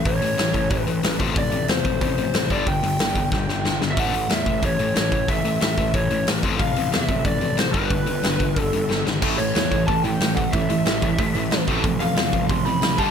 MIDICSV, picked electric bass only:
0, 0, Header, 1, 2, 480
1, 0, Start_track
1, 0, Tempo, 327332
1, 81, Time_signature, 4, 2, 24, 8
1, 19222, End_track
2, 0, Start_track
2, 0, Title_t, "Picked electric bass"
2, 0, Program_c, 0, 34
2, 80, Note_on_c, 0, 33, 82
2, 276, Note_off_c, 0, 33, 0
2, 330, Note_on_c, 0, 33, 85
2, 522, Note_off_c, 0, 33, 0
2, 559, Note_on_c, 0, 33, 86
2, 755, Note_off_c, 0, 33, 0
2, 796, Note_on_c, 0, 33, 85
2, 993, Note_off_c, 0, 33, 0
2, 1037, Note_on_c, 0, 33, 87
2, 1233, Note_off_c, 0, 33, 0
2, 1283, Note_on_c, 0, 33, 87
2, 1476, Note_off_c, 0, 33, 0
2, 1515, Note_on_c, 0, 33, 94
2, 1711, Note_off_c, 0, 33, 0
2, 1760, Note_on_c, 0, 33, 80
2, 1954, Note_off_c, 0, 33, 0
2, 1995, Note_on_c, 0, 33, 85
2, 2191, Note_off_c, 0, 33, 0
2, 2239, Note_on_c, 0, 33, 89
2, 2433, Note_off_c, 0, 33, 0
2, 2484, Note_on_c, 0, 40, 90
2, 2675, Note_off_c, 0, 40, 0
2, 2716, Note_on_c, 0, 33, 84
2, 2910, Note_off_c, 0, 33, 0
2, 2958, Note_on_c, 0, 33, 94
2, 3151, Note_off_c, 0, 33, 0
2, 3187, Note_on_c, 0, 33, 95
2, 3385, Note_off_c, 0, 33, 0
2, 3438, Note_on_c, 0, 33, 90
2, 3631, Note_off_c, 0, 33, 0
2, 3668, Note_on_c, 0, 31, 89
2, 3865, Note_off_c, 0, 31, 0
2, 3913, Note_on_c, 0, 31, 82
2, 4107, Note_off_c, 0, 31, 0
2, 4159, Note_on_c, 0, 31, 91
2, 4351, Note_off_c, 0, 31, 0
2, 4389, Note_on_c, 0, 31, 91
2, 4585, Note_off_c, 0, 31, 0
2, 4620, Note_on_c, 0, 31, 87
2, 4820, Note_off_c, 0, 31, 0
2, 4873, Note_on_c, 0, 31, 97
2, 5067, Note_off_c, 0, 31, 0
2, 5109, Note_on_c, 0, 31, 87
2, 5304, Note_off_c, 0, 31, 0
2, 5350, Note_on_c, 0, 31, 81
2, 5545, Note_off_c, 0, 31, 0
2, 5586, Note_on_c, 0, 31, 84
2, 5821, Note_off_c, 0, 31, 0
2, 5821, Note_on_c, 0, 33, 96
2, 6020, Note_off_c, 0, 33, 0
2, 6062, Note_on_c, 0, 33, 85
2, 6260, Note_off_c, 0, 33, 0
2, 6297, Note_on_c, 0, 40, 87
2, 6498, Note_off_c, 0, 40, 0
2, 6541, Note_on_c, 0, 33, 93
2, 6740, Note_off_c, 0, 33, 0
2, 6791, Note_on_c, 0, 33, 99
2, 6986, Note_off_c, 0, 33, 0
2, 7018, Note_on_c, 0, 33, 87
2, 7218, Note_off_c, 0, 33, 0
2, 7259, Note_on_c, 0, 33, 87
2, 7656, Note_off_c, 0, 33, 0
2, 7746, Note_on_c, 0, 33, 90
2, 7943, Note_off_c, 0, 33, 0
2, 7972, Note_on_c, 0, 33, 96
2, 8175, Note_off_c, 0, 33, 0
2, 8225, Note_on_c, 0, 33, 83
2, 8423, Note_off_c, 0, 33, 0
2, 8471, Note_on_c, 0, 33, 81
2, 8667, Note_off_c, 0, 33, 0
2, 8708, Note_on_c, 0, 33, 85
2, 8905, Note_off_c, 0, 33, 0
2, 8943, Note_on_c, 0, 33, 91
2, 9143, Note_off_c, 0, 33, 0
2, 9195, Note_on_c, 0, 33, 88
2, 9390, Note_off_c, 0, 33, 0
2, 9428, Note_on_c, 0, 33, 85
2, 9626, Note_off_c, 0, 33, 0
2, 9671, Note_on_c, 0, 33, 91
2, 9868, Note_off_c, 0, 33, 0
2, 9933, Note_on_c, 0, 33, 82
2, 10121, Note_off_c, 0, 33, 0
2, 10170, Note_on_c, 0, 40, 85
2, 10360, Note_off_c, 0, 40, 0
2, 10396, Note_on_c, 0, 33, 87
2, 10592, Note_off_c, 0, 33, 0
2, 10630, Note_on_c, 0, 33, 97
2, 10828, Note_off_c, 0, 33, 0
2, 10879, Note_on_c, 0, 33, 91
2, 11074, Note_off_c, 0, 33, 0
2, 11135, Note_on_c, 0, 33, 84
2, 11324, Note_off_c, 0, 33, 0
2, 11350, Note_on_c, 0, 31, 76
2, 11550, Note_off_c, 0, 31, 0
2, 11588, Note_on_c, 0, 31, 90
2, 11789, Note_off_c, 0, 31, 0
2, 11856, Note_on_c, 0, 31, 85
2, 12046, Note_off_c, 0, 31, 0
2, 12093, Note_on_c, 0, 31, 90
2, 12284, Note_off_c, 0, 31, 0
2, 12315, Note_on_c, 0, 31, 77
2, 12514, Note_off_c, 0, 31, 0
2, 12565, Note_on_c, 0, 31, 90
2, 12760, Note_off_c, 0, 31, 0
2, 12824, Note_on_c, 0, 31, 98
2, 13012, Note_off_c, 0, 31, 0
2, 13058, Note_on_c, 0, 31, 95
2, 13249, Note_off_c, 0, 31, 0
2, 13292, Note_on_c, 0, 32, 76
2, 13524, Note_off_c, 0, 32, 0
2, 13524, Note_on_c, 0, 33, 92
2, 13721, Note_off_c, 0, 33, 0
2, 13785, Note_on_c, 0, 33, 88
2, 13973, Note_off_c, 0, 33, 0
2, 14012, Note_on_c, 0, 40, 85
2, 14206, Note_off_c, 0, 40, 0
2, 14243, Note_on_c, 0, 33, 79
2, 14441, Note_off_c, 0, 33, 0
2, 14490, Note_on_c, 0, 33, 83
2, 14685, Note_off_c, 0, 33, 0
2, 14722, Note_on_c, 0, 33, 85
2, 14920, Note_off_c, 0, 33, 0
2, 14971, Note_on_c, 0, 33, 88
2, 15363, Note_off_c, 0, 33, 0
2, 15447, Note_on_c, 0, 33, 85
2, 15644, Note_off_c, 0, 33, 0
2, 15696, Note_on_c, 0, 33, 85
2, 15889, Note_off_c, 0, 33, 0
2, 15928, Note_on_c, 0, 33, 90
2, 16124, Note_off_c, 0, 33, 0
2, 16165, Note_on_c, 0, 33, 89
2, 16362, Note_off_c, 0, 33, 0
2, 16403, Note_on_c, 0, 33, 94
2, 16601, Note_off_c, 0, 33, 0
2, 16648, Note_on_c, 0, 33, 94
2, 16844, Note_off_c, 0, 33, 0
2, 16896, Note_on_c, 0, 33, 88
2, 17089, Note_off_c, 0, 33, 0
2, 17126, Note_on_c, 0, 33, 89
2, 17323, Note_off_c, 0, 33, 0
2, 17360, Note_on_c, 0, 33, 99
2, 17560, Note_off_c, 0, 33, 0
2, 17618, Note_on_c, 0, 33, 78
2, 17810, Note_off_c, 0, 33, 0
2, 17839, Note_on_c, 0, 40, 93
2, 18039, Note_off_c, 0, 40, 0
2, 18080, Note_on_c, 0, 33, 83
2, 18279, Note_off_c, 0, 33, 0
2, 18321, Note_on_c, 0, 33, 96
2, 18520, Note_off_c, 0, 33, 0
2, 18566, Note_on_c, 0, 33, 89
2, 18763, Note_off_c, 0, 33, 0
2, 18806, Note_on_c, 0, 33, 89
2, 19002, Note_off_c, 0, 33, 0
2, 19037, Note_on_c, 0, 31, 79
2, 19222, Note_off_c, 0, 31, 0
2, 19222, End_track
0, 0, End_of_file